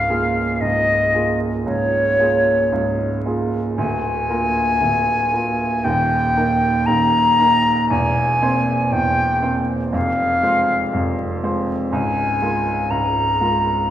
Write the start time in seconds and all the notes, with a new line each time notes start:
Already playing: C#1 C#2 F5
0.09 A#3 F4 G#4
0.61 C#1 C#2 D#5
1.14 A#3 F4 G#4
1.66 C#1 C#2 C#5
2.19 A#3 F4 G#4
2.72 C#1 C#2
3.25 A#3 F4 G#4
3.77 D1 D2 G#5
4.29 A#3 F4 A#4
4.81 D1 D2
5.33 A#3 F4 A#4
5.84 D#1 D#2 G5
6.36 A#3 D#4 A#4
6.86 D#1 D#2 A#5
7.39 A#3 D#4 A#4
7.90 E1 E2 G#5
8.42 A#3 C4 C5
8.92 E1 E2 G5
9.42 A#3 C4 C5
9.92 F1 F2 F5
10.43 G#3 F4 C5
10.93 F1 F2
11.43 G#3 F4 C5
11.91 C#1 C#2 G#5
12.42 G#3 F4 A#4
12.90 C#1 C#2 A#5
13.41 G#3 F4 A#4